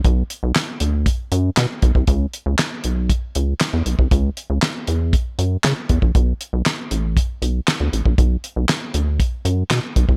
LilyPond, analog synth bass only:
\new Staff \with { instrumentName = "Analog synth bass" } { \clef bass \time 4/4 \key b \minor \tempo 4 = 118 b,,8 r16 b,,16 r8 d,8. r16 fis,8 b,16 r16 b,,16 c,16 | cis,8 r16 cis,16 r8 b,,8. r16 cis,8 r16 e,16 b,,16 c,16 | cis,8 r16 cis,16 r8 e,8. r16 fis,8 cis16 r16 e,16 ais,,16 | b,,8 r16 b,,16 r8 a,,8. r16 b,,8 r16 d,16 a,,16 ais,,16 |
b,,8 r16 b,,16 r8 d,8. r16 fis,8 b,16 r16 b,,16 c,16 | }